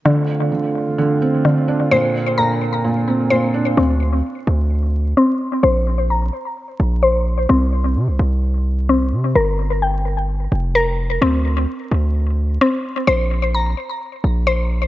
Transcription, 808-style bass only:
X:1
M:4/4
L:1/16
Q:1/4=129
K:Cmix
V:1 name="808-style bass" clef=bass
z16 | z16 | D,,4 z2 D,,6 z4 | B,,,6 z4 B,,,6 |
C,,4 C, C,, C,,8 C,2 | G,,,8- G,,,2 F,,,6 | D,,4 z2 D,,6 z4 | B,,,6 z4 B,,,6 |]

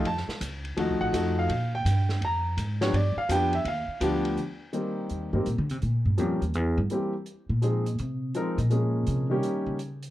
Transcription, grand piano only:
X:1
M:4/4
L:1/8
Q:"Swing" 1/4=166
K:Cm
V:1 name="Grand piano"
=a2 z3 _g2 f- | f g3 b2 z _d | d f g =e f3 z | z8 |
z8 | z8 | z8 |]
V:2 name="Grand piano"
z4 [F,=A,E_G]2 [F,A,EG]2 | z6 z [F,=B,DG] | z2 [F,=B,DG] z3 [F,B,DG]2 | z2 [E,G,B,CG]3 [E,G,B,CG] z2 |
z2 [F,G,B,_DG] z3 [=E,G,B,CG] z | z2 [F,A,CEA] z3 [F,A,CEB] z | [F,A,B,_DA]3 [E,G,B,DG]3 z2 |]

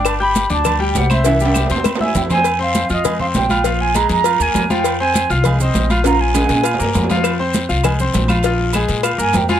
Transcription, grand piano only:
X:1
M:4/4
L:1/8
Q:1/4=200
K:Fm
V:1 name="Grand piano"
[=D=d=d'] [Ggg']2 [Ddd']2 [G,Gg]2 [Ccc'] | [=E,=E=e] [G,Gg]2 [Ccc']2 [Ee=e']2 [Ccc'] | z [Ccc']2 [Fff'] [A,Aa] [Ccc']2 [Fff'] | [F,Ff]2 [A,Aa]2 [Fff'] [B,Bb]2 [F,Ff]- |
[F,Ff] [Ccc']2 [Fff'] [A,Aa] [Ccc']2 [Fff'] | [F,Ff]2 [A,Aa]2 [Fff'] [B,Bb]2 [F,Ff]- | [F,Ff] [Ccc']2 [Fff'] [A,Aa] [Ccc']2 [Fff'] | [F,Ff]2 [A,Aa]2 [Fff'] [B,Bb]2 [F,Ff] |]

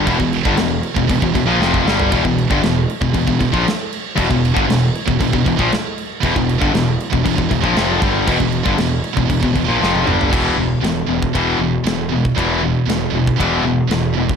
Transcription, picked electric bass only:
X:1
M:4/4
L:1/16
Q:1/4=117
K:Clyd
V:1 name="Picked electric bass" clef=bass
E,,, E,,,2 G,,, E,,,2 z E,,, E,,, E,,, E,,, ^A,,, =F,,,2 G,,,2 | E,,, E,,,2 G,,, E,,,2 z E,,, E,,, E,,, E,,, ^A,,, z4 | E,,, E,,,2 G,,, E,,,2 z E,,, E,,, E,,, E,,, ^A,,, z4 | E,,, E,,,2 G,,, E,,,2 z E,,, E,,, E,,, E,,, ^A,,, =F,,,2 G,,,2 |
E,,, E,,,2 G,,, E,,,2 z E,,, E,,, E,,, E,,, ^A,,, =F,,,2 G,,,2 | E,,,2 E,,,2 E,,,2 E,,,2 E,,,2 E,,,2 E,,,4 | E,,,4 E,,,2 E,,,2 E,,,2 E,,,2 E,,,4 |]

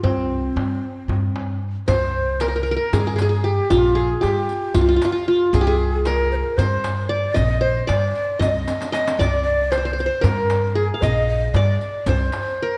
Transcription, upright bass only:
X:1
M:7/8
L:1/8
Q:1/4=115
K:none
V:1 name="Upright bass" clef=bass
C,,2 G,, z G,,3 | C,,4 G,,3 | _B,,,2 G,, z C,, z2 | C,,4 G,,3 |
_B,,,2 G,, z C,, z2 | C,,4 G,,3 | _B,,,2 G,, z C,, z2 |]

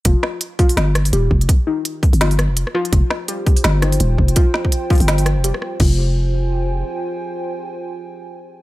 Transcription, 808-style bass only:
X:1
M:4/4
L:1/16
Q:"Swing 16ths" 1/4=167
K:Fm
V:1 name="808-style bass" clef=bass
F,,, z6 z G,,,4 E,,,2 F,,,2 | z6 z G,,,4 F,,,2 z3 | F,,, z6 z G,,,4 E,,,2 F,,,2 | z6 z G,,,4 F,,,2 z3 |
F,,,12 z4 | z16 |]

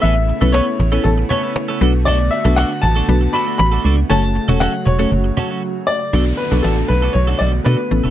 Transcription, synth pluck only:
X:1
M:4/4
L:1/16
Q:1/4=118
K:Bm
V:1 name="Synth pluck"
[B,CEAB]2 z [B,CEAB]3 z [B,CEAc]6- [B,CEAc] [B,DFAB]2- | [B,DFAB]2 z [B,DFAB]4 z [B,DFAB]6- [B,DFAB] z | [A,CFAc]2 z [A,CFAc]3 z [A,CFAc]6- [A,CFAc] z2 | [B,DFA]2 z [B,DFA]6- [B,DFA] z2 [B,DFA]2 [B,CEA]2 |]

